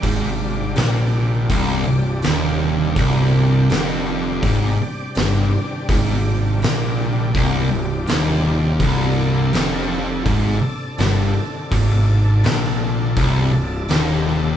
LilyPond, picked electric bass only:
\new Staff \with { instrumentName = "Picked electric bass" } { \clef bass \time 4/4 \key c \dorian \tempo 4 = 82 aes,,4 bes,,4 c,,8 c,,8 ees,,4 | c,,4 f,,4 aes,,8 r8 g,,8 r8 | aes,,4 bes,,4 c,,8 c,,8 ees,,4 | c,,4 f,,4 aes,,8 r8 g,,8 r8 |
aes,,4 bes,,4 c,,8 c,,8 ees,,4 | }